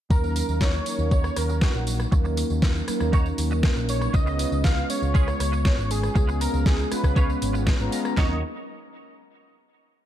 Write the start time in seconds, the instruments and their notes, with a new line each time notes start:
0.10 picked electric bass D#2, analog polysynth F#3 A#3 C#4 D#4 A#4, analog synth lead A#4, muted clean electric guitar stroke, kick, tambourine
0.23 muted clean electric guitar stroke, tambourine
0.35 muted clean electric guitar stroke, open hi-hat, tambourine
0.48 picked electric bass D#2, tambourine
0.61 analog synth lead C#5, kick, snare, tambourine
0.74 tambourine
0.85 analog polysynth F#3 A#3 C#4 D#4 A#4, open hi-hat, tambourine
0.99 picked electric bass D#2, tambourine
1.11 clean electric guitar D#4 F#4 C#5, analog synth lead C#5, kick, tambourine
1.24 cross-stick, tambourine
1.36 picked electric bass D#2, analog synth lead A#4, muted clean electric guitar stroke, cross-stick, open hi-hat, tambourine
1.49 muted clean electric guitar stroke, tambourine
1.61 analog synth lead F#4, muted clean electric guitar stroke, kick, snare, tambourine
1.75 picked electric bass A#1, tambourine
1.87 open hi-hat, tambourine
2.00 cross-stick, tambourine
2.11 picked electric bass D#2, analog polysynth F#3 A#3 C#4 D#4 A#4, muted clean electric guitar stroke, kick, tambourine
2.24 muted clean electric guitar stroke, tambourine
2.37 muted clean electric guitar stroke, open hi-hat, tambourine
2.50 picked electric bass D#2, tambourine
2.62 kick, snare, tambourine
2.75 tambourine
2.87 analog polysynth F#3 A#3 C#4 D#4 A#4, muted picked electric bass stroke, cross-stick, open hi-hat, tambourine
3.00 picked electric bass D#2, cross-stick, tambourine
3.13 clean electric guitar D#4 F#4 C#5, kick, tambourine
3.26 tambourine
3.38 picked electric bass D#2, muted clean electric guitar stroke, open hi-hat, tambourine
3.51 muted clean electric guitar stroke, tambourine
3.63 muted clean electric guitar stroke, kick, snare, tambourine
3.76 picked electric bass A#1, tambourine
3.89 analog synth lead C#5, open hi-hat, tambourine
4.01 cross-stick, tambourine
4.13 picked electric bass C#2, analog polysynth G#3 B3 C#4 F4 B4, analog synth lead D#5, muted clean electric guitar stroke, kick, tambourine
4.26 muted clean electric guitar stroke, tambourine
4.39 muted clean electric guitar stroke, open hi-hat, tambourine
4.52 picked electric bass C#2, tambourine
4.64 analog synth lead F5, kick, snare, tambourine
4.77 tambourine
4.88 analog polysynth G#3 B3 C#4 F4, analog synth lead C#5, open hi-hat, tambourine
5.02 picked electric bass C#2, tambourine
5.14 clean electric guitar C#4 F4 G#4, kick, tambourine
5.28 cross-stick, tambourine
5.39 picked electric bass C#2, muted clean electric guitar stroke, cross-stick, open hi-hat, tambourine
5.52 muted clean electric guitar stroke, tambourine
5.65 muted clean electric guitar stroke, kick, snare, tambourine
5.78 picked electric bass G#1, tambourine
5.91 analog synth lead G#4, open hi-hat, tambourine
6.03 cross-stick, tambourine
6.15 picked electric bass C#2, analog polysynth G#3 B3 C#4 F4, muted clean electric guitar stroke, kick, tambourine
6.28 muted clean electric guitar stroke, tambourine
6.41 analog synth lead A#4, muted clean electric guitar stroke, open hi-hat, tambourine
6.54 picked electric bass C#2, tambourine
6.66 analog synth lead G#4, kick, snare, tambourine
6.79 tambourine
6.91 analog polysynth G#3 B3 C#4 F4 B4, analog synth lead B4, muted picked electric bass stroke, cross-stick, open hi-hat, tambourine
7.04 picked electric bass C#2, kick, cross-stick, tambourine
7.16 clean electric guitar C#4 F4 C#5, kick, tambourine
7.30 tambourine
7.41 picked electric bass G#1, analog polysynth G#3 B3 C#4 F4 C#5, muted clean electric guitar stroke, open hi-hat, tambourine
7.53 muted clean electric guitar stroke, tambourine
7.66 muted clean electric guitar stroke, kick, snare, tambourine
7.79 picked electric bass G#1, analog polysynth G#3 B3 C#4 F4 A#5, tambourine
7.92 open hi-hat, tambourine
8.05 cross-stick, tambourine
8.16 picked electric bass D#2, analog polysynth F#3 A#3 C#4 D#4 A#4, clean electric guitar D#4 F#4 C#5, analog synth lead D#5, kick, snare, clap